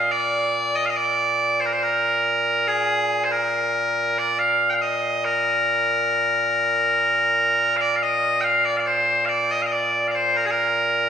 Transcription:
0, 0, Header, 1, 2, 480
1, 0, Start_track
1, 0, Tempo, 857143
1, 58, Time_signature, 3, 2, 24, 8
1, 6212, End_track
2, 0, Start_track
2, 0, Title_t, "Bagpipes"
2, 0, Program_c, 0, 109
2, 0, Note_on_c, 0, 46, 89
2, 0, Note_on_c, 0, 77, 102
2, 63, Note_off_c, 0, 77, 0
2, 63, Note_on_c, 0, 74, 117
2, 423, Note_off_c, 0, 74, 0
2, 423, Note_on_c, 0, 75, 99
2, 479, Note_off_c, 0, 75, 0
2, 479, Note_on_c, 0, 77, 79
2, 503, Note_off_c, 0, 77, 0
2, 503, Note_on_c, 0, 75, 79
2, 540, Note_off_c, 0, 75, 0
2, 540, Note_on_c, 0, 74, 102
2, 897, Note_off_c, 0, 74, 0
2, 897, Note_on_c, 0, 72, 72
2, 928, Note_off_c, 0, 72, 0
2, 928, Note_on_c, 0, 70, 61
2, 966, Note_off_c, 0, 70, 0
2, 966, Note_on_c, 0, 72, 89
2, 983, Note_off_c, 0, 72, 0
2, 983, Note_on_c, 0, 72, 63
2, 1024, Note_off_c, 0, 72, 0
2, 1024, Note_on_c, 0, 70, 92
2, 1499, Note_off_c, 0, 70, 0
2, 1499, Note_on_c, 0, 68, 99
2, 1814, Note_off_c, 0, 68, 0
2, 1814, Note_on_c, 0, 72, 67
2, 1856, Note_off_c, 0, 72, 0
2, 1856, Note_on_c, 0, 70, 94
2, 2342, Note_off_c, 0, 70, 0
2, 2342, Note_on_c, 0, 74, 91
2, 2457, Note_off_c, 0, 74, 0
2, 2457, Note_on_c, 0, 77, 110
2, 2631, Note_off_c, 0, 77, 0
2, 2631, Note_on_c, 0, 79, 66
2, 2655, Note_off_c, 0, 79, 0
2, 2655, Note_on_c, 0, 77, 66
2, 2696, Note_off_c, 0, 77, 0
2, 2696, Note_on_c, 0, 75, 80
2, 2938, Note_off_c, 0, 75, 0
2, 2938, Note_on_c, 0, 70, 90
2, 4349, Note_off_c, 0, 70, 0
2, 4349, Note_on_c, 0, 77, 106
2, 4373, Note_off_c, 0, 77, 0
2, 4373, Note_on_c, 0, 74, 106
2, 4457, Note_off_c, 0, 74, 0
2, 4457, Note_on_c, 0, 77, 67
2, 4494, Note_off_c, 0, 77, 0
2, 4494, Note_on_c, 0, 75, 97
2, 4709, Note_off_c, 0, 75, 0
2, 4709, Note_on_c, 0, 79, 104
2, 4727, Note_off_c, 0, 79, 0
2, 4727, Note_on_c, 0, 77, 104
2, 4843, Note_off_c, 0, 77, 0
2, 4843, Note_on_c, 0, 74, 102
2, 4909, Note_off_c, 0, 74, 0
2, 4909, Note_on_c, 0, 77, 67
2, 4928, Note_off_c, 0, 77, 0
2, 4928, Note_on_c, 0, 74, 67
2, 4962, Note_off_c, 0, 74, 0
2, 4962, Note_on_c, 0, 72, 96
2, 5182, Note_off_c, 0, 72, 0
2, 5182, Note_on_c, 0, 77, 85
2, 5201, Note_off_c, 0, 77, 0
2, 5201, Note_on_c, 0, 74, 85
2, 5326, Note_off_c, 0, 74, 0
2, 5326, Note_on_c, 0, 75, 99
2, 5386, Note_off_c, 0, 75, 0
2, 5386, Note_on_c, 0, 77, 67
2, 5409, Note_off_c, 0, 77, 0
2, 5409, Note_on_c, 0, 75, 67
2, 5443, Note_off_c, 0, 75, 0
2, 5443, Note_on_c, 0, 74, 81
2, 5642, Note_off_c, 0, 74, 0
2, 5642, Note_on_c, 0, 77, 53
2, 5662, Note_off_c, 0, 77, 0
2, 5662, Note_on_c, 0, 74, 53
2, 5683, Note_off_c, 0, 74, 0
2, 5683, Note_on_c, 0, 72, 80
2, 5804, Note_off_c, 0, 72, 0
2, 5804, Note_on_c, 0, 70, 82
2, 5855, Note_off_c, 0, 70, 0
2, 5855, Note_on_c, 0, 68, 82
2, 5885, Note_off_c, 0, 68, 0
2, 5885, Note_on_c, 0, 70, 89
2, 6212, Note_off_c, 0, 46, 0
2, 6212, Note_off_c, 0, 70, 0
2, 6212, End_track
0, 0, End_of_file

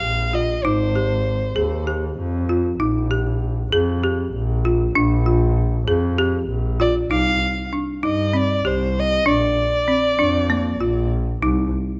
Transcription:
0, 0, Header, 1, 4, 480
1, 0, Start_track
1, 0, Tempo, 614754
1, 507, Time_signature, 7, 3, 24, 8
1, 9368, End_track
2, 0, Start_track
2, 0, Title_t, "Violin"
2, 0, Program_c, 0, 40
2, 0, Note_on_c, 0, 77, 87
2, 268, Note_on_c, 0, 75, 76
2, 280, Note_off_c, 0, 77, 0
2, 503, Note_on_c, 0, 72, 79
2, 515, Note_off_c, 0, 75, 0
2, 1465, Note_off_c, 0, 72, 0
2, 5316, Note_on_c, 0, 74, 80
2, 5422, Note_off_c, 0, 74, 0
2, 5549, Note_on_c, 0, 77, 90
2, 5997, Note_off_c, 0, 77, 0
2, 6284, Note_on_c, 0, 75, 75
2, 6531, Note_on_c, 0, 74, 80
2, 6543, Note_off_c, 0, 75, 0
2, 6767, Note_on_c, 0, 72, 74
2, 6778, Note_off_c, 0, 74, 0
2, 7020, Note_on_c, 0, 75, 97
2, 7032, Note_off_c, 0, 72, 0
2, 7244, Note_off_c, 0, 75, 0
2, 7251, Note_on_c, 0, 74, 91
2, 8650, Note_off_c, 0, 74, 0
2, 9368, End_track
3, 0, Start_track
3, 0, Title_t, "Marimba"
3, 0, Program_c, 1, 12
3, 0, Note_on_c, 1, 67, 57
3, 120, Note_off_c, 1, 67, 0
3, 260, Note_on_c, 1, 65, 56
3, 430, Note_off_c, 1, 65, 0
3, 505, Note_on_c, 1, 63, 74
3, 674, Note_off_c, 1, 63, 0
3, 746, Note_on_c, 1, 67, 55
3, 1082, Note_off_c, 1, 67, 0
3, 1216, Note_on_c, 1, 68, 67
3, 1388, Note_off_c, 1, 68, 0
3, 1461, Note_on_c, 1, 67, 56
3, 1799, Note_off_c, 1, 67, 0
3, 1947, Note_on_c, 1, 65, 66
3, 2115, Note_off_c, 1, 65, 0
3, 2185, Note_on_c, 1, 63, 74
3, 2353, Note_off_c, 1, 63, 0
3, 2426, Note_on_c, 1, 67, 58
3, 2762, Note_off_c, 1, 67, 0
3, 2908, Note_on_c, 1, 68, 80
3, 3076, Note_off_c, 1, 68, 0
3, 3151, Note_on_c, 1, 67, 69
3, 3485, Note_off_c, 1, 67, 0
3, 3631, Note_on_c, 1, 65, 66
3, 3798, Note_off_c, 1, 65, 0
3, 3868, Note_on_c, 1, 62, 77
3, 4036, Note_off_c, 1, 62, 0
3, 4107, Note_on_c, 1, 65, 66
3, 4443, Note_off_c, 1, 65, 0
3, 4588, Note_on_c, 1, 68, 77
3, 4755, Note_off_c, 1, 68, 0
3, 4829, Note_on_c, 1, 67, 77
3, 5164, Note_off_c, 1, 67, 0
3, 5308, Note_on_c, 1, 65, 71
3, 5475, Note_off_c, 1, 65, 0
3, 5549, Note_on_c, 1, 63, 70
3, 5884, Note_off_c, 1, 63, 0
3, 6033, Note_on_c, 1, 62, 56
3, 6199, Note_off_c, 1, 62, 0
3, 6271, Note_on_c, 1, 63, 71
3, 6438, Note_off_c, 1, 63, 0
3, 6508, Note_on_c, 1, 60, 64
3, 6676, Note_off_c, 1, 60, 0
3, 6753, Note_on_c, 1, 67, 67
3, 7087, Note_off_c, 1, 67, 0
3, 7229, Note_on_c, 1, 62, 79
3, 7565, Note_off_c, 1, 62, 0
3, 7713, Note_on_c, 1, 60, 67
3, 7879, Note_off_c, 1, 60, 0
3, 7954, Note_on_c, 1, 62, 69
3, 8120, Note_off_c, 1, 62, 0
3, 8196, Note_on_c, 1, 58, 69
3, 8362, Note_off_c, 1, 58, 0
3, 8437, Note_on_c, 1, 65, 63
3, 8770, Note_off_c, 1, 65, 0
3, 8921, Note_on_c, 1, 63, 76
3, 9253, Note_off_c, 1, 63, 0
3, 9368, End_track
4, 0, Start_track
4, 0, Title_t, "Double bass"
4, 0, Program_c, 2, 43
4, 21, Note_on_c, 2, 34, 76
4, 473, Note_off_c, 2, 34, 0
4, 499, Note_on_c, 2, 32, 87
4, 1192, Note_off_c, 2, 32, 0
4, 1223, Note_on_c, 2, 39, 73
4, 1674, Note_off_c, 2, 39, 0
4, 1706, Note_on_c, 2, 41, 84
4, 2155, Note_off_c, 2, 41, 0
4, 2183, Note_on_c, 2, 34, 90
4, 2874, Note_off_c, 2, 34, 0
4, 2907, Note_on_c, 2, 41, 76
4, 3356, Note_off_c, 2, 41, 0
4, 3383, Note_on_c, 2, 34, 92
4, 3834, Note_off_c, 2, 34, 0
4, 3871, Note_on_c, 2, 34, 107
4, 4558, Note_off_c, 2, 34, 0
4, 4583, Note_on_c, 2, 41, 80
4, 5034, Note_off_c, 2, 41, 0
4, 5060, Note_on_c, 2, 34, 82
4, 5513, Note_off_c, 2, 34, 0
4, 5545, Note_on_c, 2, 36, 69
4, 5764, Note_off_c, 2, 36, 0
4, 6272, Note_on_c, 2, 43, 73
4, 6719, Note_off_c, 2, 43, 0
4, 6756, Note_on_c, 2, 36, 75
4, 7201, Note_off_c, 2, 36, 0
4, 7238, Note_on_c, 2, 34, 77
4, 7452, Note_off_c, 2, 34, 0
4, 7950, Note_on_c, 2, 41, 71
4, 8399, Note_off_c, 2, 41, 0
4, 8434, Note_on_c, 2, 34, 91
4, 8881, Note_off_c, 2, 34, 0
4, 8916, Note_on_c, 2, 36, 85
4, 9132, Note_off_c, 2, 36, 0
4, 9368, End_track
0, 0, End_of_file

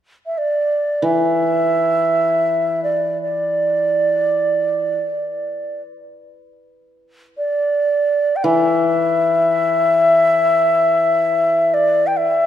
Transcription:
0, 0, Header, 1, 3, 480
1, 0, Start_track
1, 0, Tempo, 500000
1, 11965, End_track
2, 0, Start_track
2, 0, Title_t, "Xiao"
2, 0, Program_c, 0, 77
2, 252, Note_on_c, 0, 76, 51
2, 364, Note_on_c, 0, 74, 63
2, 379, Note_off_c, 0, 76, 0
2, 1005, Note_on_c, 0, 76, 72
2, 1020, Note_off_c, 0, 74, 0
2, 2717, Note_off_c, 0, 76, 0
2, 2722, Note_on_c, 0, 74, 53
2, 3074, Note_off_c, 0, 74, 0
2, 3092, Note_on_c, 0, 74, 68
2, 5581, Note_off_c, 0, 74, 0
2, 7082, Note_on_c, 0, 74, 74
2, 8026, Note_on_c, 0, 79, 56
2, 8040, Note_off_c, 0, 74, 0
2, 8111, Note_on_c, 0, 76, 91
2, 8125, Note_off_c, 0, 79, 0
2, 11269, Note_on_c, 0, 74, 76
2, 11283, Note_off_c, 0, 76, 0
2, 11586, Note_on_c, 0, 79, 56
2, 11600, Note_off_c, 0, 74, 0
2, 11683, Note_on_c, 0, 76, 76
2, 11697, Note_off_c, 0, 79, 0
2, 11965, Note_off_c, 0, 76, 0
2, 11965, End_track
3, 0, Start_track
3, 0, Title_t, "Hammered dulcimer"
3, 0, Program_c, 1, 15
3, 982, Note_on_c, 1, 52, 43
3, 4728, Note_off_c, 1, 52, 0
3, 8102, Note_on_c, 1, 52, 50
3, 11731, Note_off_c, 1, 52, 0
3, 11965, End_track
0, 0, End_of_file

